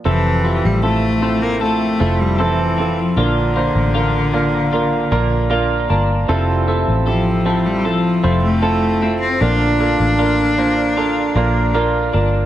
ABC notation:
X:1
M:4/4
L:1/16
Q:1/4=77
K:F
V:1 name="Grand piano"
[CEA]2 [CEFG]2 [CEFA]2 [CEFc]2 [CEFA]2 [CEFA]2 [CEA]2 [CEFA]2 | [B,DFB]2 [B,DFc]2 [B,DFB]2 [B,DFB]2 [B,DFB]2 [B,DFB]2 [B,DFB]2 [B,DFB]2 | [CEFA]2 [CEFA]2 [CEFG]2 [CEFA]2 [CEFA]2 [CEFc]2 [CEFA]2 [CEFc]2 | [B,DFB]2 [B,DFA]2 [B,DFB]2 [B,DFc]2 [B,DFA]2 [B,DFB]2 [B,DFB]2 [B,DFB]2 |]
V:2 name="Grand piano" clef=bass
C,6 z8 z2 | [D,F,]6 z8 z2 | C,6 z8 z2 | [D,F,]6 z8 z2 |]
V:3 name="Clean electric guitar"
[F,,A]2 A,2 A2 A,2 A2 A,2 A2 C2 | F2 B,2 F2 B,2 F2 B,2 F2 D2 | [F,,A]2 A,2 A2 A,2 A2 A,2 A2 C2 | F2 B,2 F2 B,2 F2 B,2 F2 D2 |]
V:4 name="Cello" clef=bass
E,3 G, A,3 B, A,3 G, E,3 F, | D,12 z4 | z4 F,3 G, F,3 A,4 C | D12 z4 |]
V:5 name="Fingered electric bass" clef=bass
F,,,3 A,,,6- A,,, F,,,6 | B,,,3 A,,,6- A,,, B,,,4 G,,,2 | F,,,3 A,,,6- A,,, F,,,6 | B,,,3 A,,,6- A,,, B,,,4 G,,,2 |]